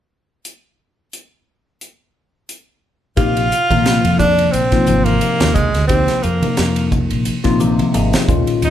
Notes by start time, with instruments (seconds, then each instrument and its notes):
0.45 closed hi-hat
1.13 closed hi-hat
1.81 closed hi-hat
2.49 closed hi-hat
3.16 fretless electric bass A#1, tine electric piano C3 F3 A#3 D#4 G4, tenor saxophone F4, kick, hi-hat pedal, ride
3.37 ride
3.52 tine electric piano D#4 G4, hi-hat pedal
3.70 fretless electric bass A#2, tine electric piano C3 D#3 F3 A#3 A#4, kick, ride, high conga
3.86 snare, hi-hat pedal, ride
4.05 fretless electric bass F2, ride
4.19 tenor saxophone D4, kick, hi-hat pedal, low conga
4.39 ride
4.52 fretless electric bass A#1, tenor saxophone C4, hi-hat pedal, ride
4.72 tine electric piano C3 F3 A#3 D#4 F4, kick, snare, ride
4.86 fretless electric bass G#1, tine electric piano C3 F3 A#3 D#4 F4, hi-hat pedal, high conga
5.05 tenor saxophone A#3, ride, high conga
5.21 tine electric piano C3 F3 A#3 D#4 G4, hi-hat pedal, ride
5.40 fretless electric bass D#2, snare, ride, high conga
5.55 tenor saxophone G#3, tine electric piano D#4 A#4, kick, hi-hat pedal, low conga
5.74 fretless electric bass D2, snare, ride
5.88 tine electric piano C3 F3 A#3 D#4 G4, tenor saxophone C4, kick, hi-hat pedal, ride
6.08 snare, ride
6.23 fretless electric bass F2, tenor saxophone A#3, tine electric piano D#4 A#4, hi-hat pedal
6.42 tine electric piano C3 F3 A#3 D#4 A#4, ride, high conga
6.57 fretless electric bass F2, snare, hi-hat pedal, ride
6.76 ride
6.92 kick, hi-hat pedal, low conga
7.10 fretless electric bass A#1, ride
7.25 hi-hat pedal, ride
7.44 fretless electric bass A#1, tine electric piano C3 F3 A#3 D#4 F4, kick, snare, ride
7.60 tine electric piano C3 F3 A#3 D#4 G4, hi-hat pedal, high conga
7.79 ride, high conga
7.94 fretless electric bass G#1, tine electric piano C3 F3 A#3 D#4 G#4, hi-hat pedal, ride
8.13 muted fretless electric bass stroke, snare, ride, high conga
8.28 fretless electric bass D#2, tine electric piano A#2 D#3 G#3 C#4 F4, kick, hi-hat pedal, low conga
8.47 muted fretless electric bass stroke, ride
8.62 fretless electric bass D#2, tenor saxophone D#4, hi-hat pedal, ride